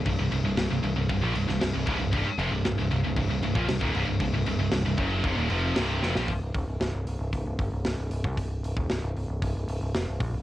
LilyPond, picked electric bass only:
\new Staff \with { instrumentName = "Picked electric bass" } { \clef bass \time 4/4 \key c \minor \tempo 4 = 115 c,,16 c,,16 c,,16 c,,16 c,,16 c,,16 c,,16 c,,16 c,,16 bes,,16 c,,16 c,,16 c,,16 c,,16 c,,16 c,,16 | c,,16 r16 f,,16 c,,16 c,,16 c,,16 c,,16 c,,16 c,,16 c,,16 c,,16 bes,,16 c,,16 ees,,16 c,,16 c,,16 | c,,16 c,,16 c,,16 c,,16 c,,16 c,,16 fis,,8 f,,16 ees,,16 f,,8 c,,8 f,,16 bes,,16 | c,,16 c,,16 ees,,16 c,,16 c,,16 c,,16 c,,16 c,,16 c,,16 c,,16 g,,16 c,,16 c,,16 c,,16 c,,16 c,16 |
c,,8 c,,16 ees,,16 c,,16 c,,16 c,,16 c,,16 c,,16 c,,16 c,,16 c,,16 f,,16 c,,16 bes,,16 c,,16 | }